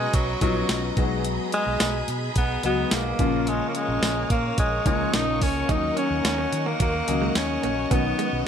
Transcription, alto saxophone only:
0, 0, Header, 1, 2, 480
1, 0, Start_track
1, 0, Key_signature, -6, "minor"
1, 0, Tempo, 555556
1, 1077, Time_signature, 4, 2, 24, 8
1, 7323, End_track
2, 0, Start_track
2, 0, Title_t, "Alto saxophone"
2, 0, Program_c, 0, 65
2, 0, Note_on_c, 0, 56, 101
2, 124, Note_on_c, 0, 54, 89
2, 137, Note_off_c, 0, 56, 0
2, 358, Note_off_c, 0, 54, 0
2, 363, Note_on_c, 0, 54, 86
2, 806, Note_off_c, 0, 54, 0
2, 1327, Note_on_c, 0, 56, 119
2, 1769, Note_off_c, 0, 56, 0
2, 2052, Note_on_c, 0, 59, 94
2, 2268, Note_off_c, 0, 59, 0
2, 2293, Note_on_c, 0, 59, 90
2, 2533, Note_on_c, 0, 58, 96
2, 2546, Note_off_c, 0, 59, 0
2, 3012, Note_on_c, 0, 56, 94
2, 3025, Note_off_c, 0, 58, 0
2, 3184, Note_off_c, 0, 56, 0
2, 3188, Note_on_c, 0, 58, 71
2, 3249, Note_on_c, 0, 56, 100
2, 3262, Note_off_c, 0, 58, 0
2, 3721, Note_off_c, 0, 56, 0
2, 3726, Note_on_c, 0, 58, 96
2, 3945, Note_off_c, 0, 58, 0
2, 3967, Note_on_c, 0, 56, 101
2, 4186, Note_off_c, 0, 56, 0
2, 4202, Note_on_c, 0, 56, 97
2, 4445, Note_on_c, 0, 63, 112
2, 4458, Note_off_c, 0, 56, 0
2, 4688, Note_on_c, 0, 61, 97
2, 4701, Note_off_c, 0, 63, 0
2, 4933, Note_on_c, 0, 63, 109
2, 4946, Note_off_c, 0, 61, 0
2, 5161, Note_off_c, 0, 63, 0
2, 5166, Note_on_c, 0, 61, 96
2, 5385, Note_off_c, 0, 61, 0
2, 5405, Note_on_c, 0, 61, 109
2, 5764, Note_on_c, 0, 58, 92
2, 5777, Note_off_c, 0, 61, 0
2, 5881, Note_off_c, 0, 58, 0
2, 5888, Note_on_c, 0, 58, 102
2, 6329, Note_off_c, 0, 58, 0
2, 6366, Note_on_c, 0, 61, 99
2, 6847, Note_on_c, 0, 59, 98
2, 6860, Note_off_c, 0, 61, 0
2, 7322, Note_off_c, 0, 59, 0
2, 7323, End_track
0, 0, End_of_file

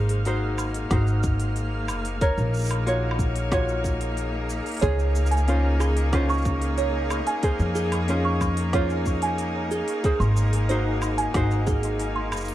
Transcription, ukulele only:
0, 0, Header, 1, 2, 480
1, 0, Start_track
1, 0, Key_signature, -5, "major"
1, 0, Tempo, 652174
1, 1628, Time_signature, 4, 2, 24, 8
1, 9234, End_track
2, 0, Start_track
2, 0, Title_t, "Ukulele"
2, 0, Program_c, 0, 24
2, 0, Note_on_c, 0, 68, 87
2, 0, Note_on_c, 0, 72, 74
2, 187, Note_off_c, 0, 68, 0
2, 190, Note_on_c, 0, 63, 66
2, 191, Note_off_c, 0, 72, 0
2, 195, Note_on_c, 0, 66, 68
2, 200, Note_on_c, 0, 72, 68
2, 663, Note_off_c, 0, 63, 0
2, 672, Note_off_c, 0, 72, 0
2, 672, Note_on_c, 0, 63, 68
2, 673, Note_off_c, 0, 66, 0
2, 676, Note_on_c, 0, 66, 68
2, 681, Note_on_c, 0, 72, 69
2, 1630, Note_off_c, 0, 72, 0
2, 1630, Note_on_c, 0, 70, 86
2, 1633, Note_on_c, 0, 73, 72
2, 1678, Note_off_c, 0, 63, 0
2, 2108, Note_on_c, 0, 65, 71
2, 2110, Note_off_c, 0, 66, 0
2, 2113, Note_on_c, 0, 66, 65
2, 2115, Note_off_c, 0, 73, 0
2, 2118, Note_on_c, 0, 73, 75
2, 2582, Note_off_c, 0, 66, 0
2, 2585, Note_off_c, 0, 65, 0
2, 2588, Note_on_c, 0, 65, 71
2, 2591, Note_on_c, 0, 66, 65
2, 2593, Note_off_c, 0, 73, 0
2, 2596, Note_on_c, 0, 73, 74
2, 3546, Note_off_c, 0, 70, 0
2, 3549, Note_on_c, 0, 68, 84
2, 3550, Note_off_c, 0, 73, 0
2, 3553, Note_on_c, 0, 72, 70
2, 3597, Note_off_c, 0, 66, 0
2, 4028, Note_off_c, 0, 65, 0
2, 4031, Note_on_c, 0, 61, 66
2, 4035, Note_on_c, 0, 65, 66
2, 4037, Note_off_c, 0, 72, 0
2, 4040, Note_on_c, 0, 72, 70
2, 4503, Note_off_c, 0, 61, 0
2, 4507, Note_off_c, 0, 65, 0
2, 4511, Note_on_c, 0, 61, 71
2, 4516, Note_on_c, 0, 65, 73
2, 4518, Note_off_c, 0, 72, 0
2, 4521, Note_on_c, 0, 72, 71
2, 5468, Note_off_c, 0, 65, 0
2, 5471, Note_off_c, 0, 68, 0
2, 5471, Note_on_c, 0, 68, 88
2, 5473, Note_off_c, 0, 72, 0
2, 5476, Note_on_c, 0, 72, 76
2, 5941, Note_off_c, 0, 61, 0
2, 5950, Note_on_c, 0, 61, 70
2, 5952, Note_off_c, 0, 68, 0
2, 5955, Note_on_c, 0, 65, 67
2, 5958, Note_off_c, 0, 72, 0
2, 5960, Note_on_c, 0, 72, 75
2, 6422, Note_off_c, 0, 61, 0
2, 6427, Note_off_c, 0, 65, 0
2, 6431, Note_on_c, 0, 61, 71
2, 6436, Note_on_c, 0, 65, 71
2, 6437, Note_off_c, 0, 72, 0
2, 6440, Note_on_c, 0, 72, 75
2, 7391, Note_off_c, 0, 61, 0
2, 7394, Note_on_c, 0, 68, 90
2, 7396, Note_off_c, 0, 65, 0
2, 7399, Note_off_c, 0, 72, 0
2, 7399, Note_on_c, 0, 72, 70
2, 7870, Note_off_c, 0, 68, 0
2, 7873, Note_off_c, 0, 72, 0
2, 7873, Note_on_c, 0, 63, 74
2, 7878, Note_on_c, 0, 66, 72
2, 7883, Note_on_c, 0, 72, 76
2, 8344, Note_off_c, 0, 63, 0
2, 8353, Note_on_c, 0, 63, 69
2, 8354, Note_off_c, 0, 72, 0
2, 8355, Note_off_c, 0, 66, 0
2, 8358, Note_on_c, 0, 66, 67
2, 8362, Note_on_c, 0, 72, 74
2, 9234, Note_off_c, 0, 63, 0
2, 9234, Note_off_c, 0, 66, 0
2, 9234, Note_off_c, 0, 72, 0
2, 9234, End_track
0, 0, End_of_file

